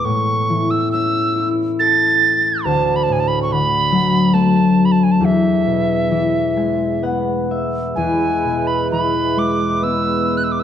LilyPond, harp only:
<<
  \new Staff \with { instrumentName = "Harp" } { \time 3/4 \key e \mixolydian \tempo 4 = 68 r2. | r2. | r4. gis''8 fis''8 e''8 | r2. | }
  \new Staff \with { instrumentName = "Harp" } { \clef bass \time 3/4 \key e \mixolydian a,8 e8 cis'8 e'8 a'4 | d,8 a,8 d8 fis8 a4 | e,8 b,8 e8 gis8 b4 | e,8 b,8 e8 gis8 b4 | }
>>